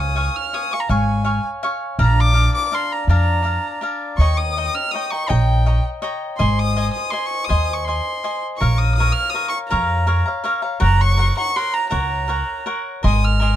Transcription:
Already playing: upright bass C#2, cavaquinho C#5 F5 G#5 C#6
0.00 violin D#6
0.16 cavaquinho C#5 F5 G#5 C#6
0.36 violin F6
0.53 cavaquinho C#5 F5 G#5 C#6, violin D#6
0.71 cavaquinho F5 G#5 C#6, violin C#6
0.80 violin A#5
0.89 upright bass G#1, cavaquinho C#5 F5 G#5 C#6, violin G#5
1.24 cavaquinho C#5 F5 G#5 C#6
1.63 cavaquinho C#5 F5 G#5 C#6
1.99 upright bass A#1, cavaquinho D4 D5 F5 A#5
2.03 violin A#5
2.21 violin D6
2.33 cavaquinho D4 D5 F5 A#5
2.55 violin D6
2.72 cavaquinho D4 D5 F5 A#5, violin C6
2.92 violin A#5
3.07 upright bass F2, cavaquinho D4 D5 F5 A#5, violin A#5
3.42 cavaquinho D4 D5 F5 A#5
3.81 cavaquinho D4 D5 F5 A#5
4.18 upright bass D#2, cavaquinho C#5 D#5 G5 A#5, violin C#6
4.37 violin D#6
4.57 cavaquinho C#5 D#5 G5 A#5
4.75 violin F6
4.91 cavaquinho C#5 D#5, violin D#6
4.95 cavaquinho G5 A#5
5.11 cavaquinho D#5 G5 A#5, violin C#6
5.28 upright bass A#1, cavaquinho C#5 D#5 G5 A#5, violin G5
5.66 cavaquinho C#5 D#5 G5 A#5
6.02 cavaquinho C#5 D#5 G5 A#5
6.38 upright bass G#1, cavaquinho C5 D#5 G#5 C6, violin C6
6.59 violin D#6
6.76 cavaquinho C5 D#5 G#5 C6
6.93 violin D#6
7.10 cavaquinho C5 D#5 G#5 C6, violin C6
7.26 violin C#6
7.45 violin D#6
7.49 upright bass D#2, cavaquinho C5 D#5 G#5 C6
7.73 violin C#6
7.84 cavaquinho C5 D#5, violin C6
7.88 cavaquinho G#5 C6
8.24 cavaquinho C5 D#5 G#5 C6
8.58 upright bass A#1, cavaquinho A#4 C#5 F5, violin C#6
8.63 cavaquinho A#5
8.78 violin D#6
8.95 violin D#6
9.00 cavaquinho A#4 C#5 F5 A#5
9.12 violin F6
9.30 violin D#6
9.34 cavaquinho A#4 C#5 F5 A#5
9.49 violin C#6
9.68 cavaquinho A#4 C#5 F5 A#5, violin A#5
9.72 upright bass F2
10.07 cavaquinho A#4 C#5 F5 A#5
10.26 cavaquinho C#5 F5 A#5
10.44 cavaquinho A#4 C#5 F5 A#5
10.62 cavaquinho C#5 F5 A#5
10.80 upright bass F#1, cavaquinho A#4 C#5 F#5 A#5, violin A#5
11.01 violin C#6
11.17 cavaquinho A#4 C#5 F#5 A#5
11.37 cavaquinho C#5 F#5 A#5, violin C#6
11.56 cavaquinho A#4 C#5 F#5 A#5, violin C6
11.74 violin A#5
11.90 upright bass C#2, cavaquinho A#4 C#5 F#5 A#5, violin A#5
12.28 cavaquinho A#4 C#5 F#5 A#5
12.66 cavaquinho A#4 C#5 F#5 A#5
13.03 upright bass G#1, cavaquinho A#4 D#5 G#5 C6, violin D#6
13.25 violin F6
13.40 cavaquinho A#4 D#5 G#5 C6

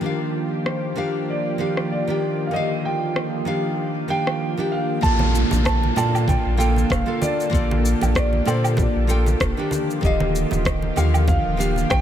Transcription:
Already playing: analog synth pad F3 A#3 F4 G4
0.01 nylon-string guitar D#3 D4 G4
0.06 nylon-string guitar F5
0.66 grand piano C5, cross-stick
0.96 nylon-string guitar D#3 D4 G4 F5
1.30 grand piano D5
1.58 nylon-string guitar D#3 D4 G4 F5
1.77 cross-stick
1.92 grand piano D5
2.07 nylon-string guitar D#3 D4 G4 G5
2.47 nylon-string guitar D#3, grand piano F5
2.53 nylon-string guitar D3 G4 F5, grand piano D#5
2.85 grand piano G5
3.16 cross-stick
3.45 nylon-string guitar D#3 D4 G4 F5
4.08 nylon-string guitar D#3 D4 G4 F5, grand piano G5
4.27 cross-stick
4.57 nylon-string guitar D#3 D4 G4 G5
4.72 grand piano F5
5.01 sub bass A#1, analog synth pad D3 A#3 F4 A4, nylon-string guitar A#3 F4 A4, grand piano A5, kick, downlifter, shaker
5.06 nylon-string guitar D5
5.19 high conga
5.35 shaker
5.51 sub bass A#1, high bongo, low conga, shaker
5.65 grand piano A5, kick, cross-stick, shaker
5.83 high conga
5.96 sub bass A#2, nylon-string guitar A#3 F4 A4 D5, grand piano A5, high bongo, low woodblock, shaker
6.15 low woodblock, shaker
6.28 grand piano G5, kick, high conga, shaker
6.45 sub bass A#1
6.57 nylon-string guitar A#3 F4 A4 G5, grand piano G5, shaker
6.76 high conga, shaker
6.90 sub bass F1, grand piano F5, kick, cross-stick, shaker
7.06 nylon-string guitar A#3 F4 A4 F5
7.21 grand piano D5, high conga, shaker
7.40 shaker
7.50 sub bass A#1, nylon-string guitar A#3 F4 A4, analog synth pad G4, kick
7.54 nylon-string guitar D5, shaker
7.71 high conga
7.85 shaker
8.01 sub bass A#1, high bongo, low conga, low woodblock, shaker
8.15 grand piano D5, kick, cross-stick, shaker
8.33 high conga
8.46 sub bass A#2, nylon-string guitar A#3 F4 A4 D5, grand piano C5, high bongo, low woodblock, shaker
8.64 low woodblock, shaker
8.77 grand piano D5, kick, high conga, shaker
8.95 sub bass A#1
9.07 nylon-string guitar A#3 F4 A4 G5, shaker
9.26 high bongo, high conga, shaker
9.40 sub bass F1, kick, cross-stick, shaker
9.57 nylon-string guitar D#3 D4 G4 G5
9.71 analog synth pad F3 A#3 F4, high conga, shaker
9.91 shaker
10.01 sub bass D#1, nylon-string guitar D3 D#3 G4, grand piano D#5, kick, shaker
10.06 nylon-string guitar F5
10.20 high conga
10.35 shaker
10.51 sub bass D#1, high bongo, low conga, shaker
10.65 kick, cross-stick, shaker
10.82 high conga
10.96 sub bass D#2, nylon-string guitar D3 D#3 G4 F5, high bongo, low woodblock, shaker
11.14 low woodblock, shaker
11.28 grand piano F5, kick, high conga, shaker
11.45 sub bass D#1
11.57 nylon-string guitar D#3 D4 G4 F5, shaker
11.76 high conga, shaker
11.90 sub bass A#1, grand piano G5, kick, cross-stick, shaker

